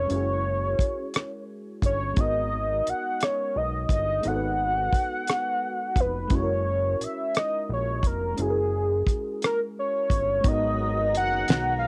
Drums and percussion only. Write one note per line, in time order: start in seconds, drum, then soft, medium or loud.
0.10 closed hi-hat medium
0.79 kick medium
0.79 closed hi-hat medium
1.14 cross-stick loud
1.14 closed hi-hat medium
1.82 kick medium
1.82 closed hi-hat medium
2.16 kick medium
2.16 closed hi-hat medium
2.87 closed hi-hat medium
3.21 cross-stick loud
3.21 closed hi-hat medium
3.89 kick medium
3.89 closed hi-hat medium
4.23 closed hi-hat medium
4.93 kick medium
4.93 closed hi-hat medium
5.27 cross-stick medium
5.27 closed hi-hat medium
5.96 kick medium
5.96 closed hi-hat medium
6.30 kick medium
6.30 closed hi-hat medium
7.01 closed hi-hat medium
7.35 cross-stick loud
7.35 closed hi-hat medium
8.03 kick medium
8.03 closed hi-hat medium
8.38 closed hi-hat medium
9.06 kick medium
9.06 closed hi-hat medium
9.42 cross-stick medium
9.42 closed hi-hat medium
10.10 kick medium
10.10 closed hi-hat medium
10.44 kick loud
10.44 closed hi-hat medium
11.15 closed hi-hat medium
11.48 snare loud
11.48 closed hi-hat medium